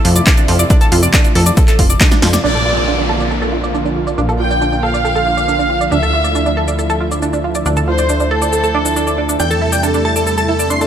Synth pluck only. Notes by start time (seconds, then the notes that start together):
0.05 F4
0.16 D5
0.27 D4
0.38 D4
0.48 F4
0.59 D5
0.70 D4
0.81 A4
0.92 F4
1.03 D5
1.14 D4
1.24 D4
1.35 A4
1.46 D5
1.57 A4
1.68 A4
1.79 F4
1.90 D5
2.01 D4
2.11 D4
2.22 F4
2.33 D5
2.44 D4
2.55 A4
2.66 F4
2.77 D5
2.87 D4
2.98 D4
3.09 A4
3.20 D5
3.31 A4
3.42 A4
3.53 F4
3.64 D5
3.74 D4
3.85 D4
3.96 F4
4.07 D5
4.18 D4
4.29 A4
4.40 F4
4.51 D5
4.61 D4
4.72 D4
4.83 A4
4.94 D5
5.05 A4
5.16 A4
5.27 F4
5.37 D5
5.48 D4
5.59 D4
5.70 F4
5.81 D5
5.92 D4
6.03 A4
6.13 F4
6.24 D5
6.35 D4
6.46 D4
6.57 A4
6.68 D5
6.79 A4
6.90 A4
7.01 F4
7.12 D5
7.22 D4
7.33 D4
7.44 F4
7.55 D5
7.66 D4
7.77 A4
7.88 F4
7.99 D5
8.09 D4
8.20 D4
8.31 A4
8.42 D5
8.53 A4
8.64 A4
8.75 D4
8.85 D4
8.96 D4
9.07 D5
9.18 D4
9.29 D4
9.40 D4
9.51 A4
9.62 E4
9.72 D5
9.83 D4
9.94 D4
10.05 A4
10.16 D5
10.27 A4
10.38 A4
10.48 E4
10.59 D5
10.70 D4
10.81 D4